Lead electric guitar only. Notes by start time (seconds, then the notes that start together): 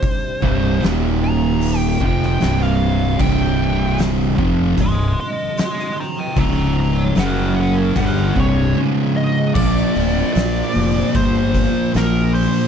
Already playing: C5
1.24 A#5
1.78 G5
2.06 G5
2.26 G5
2.63 F5
3.21 G5
4.81 D#5 C6
5.20 D#5 C6
5.61 D#5 C6
6.00 G5 A#5
6.39 C#5 A#5
6.80 C#5 A#5
7.19 A#4 F#5
7.60 A#4 F#5
8.00 A#4 F#5
8.40 C#5
9.17 D#5
9.54 D5
10.33 D5
11.16 C5
11.97 A#4
12.34 C5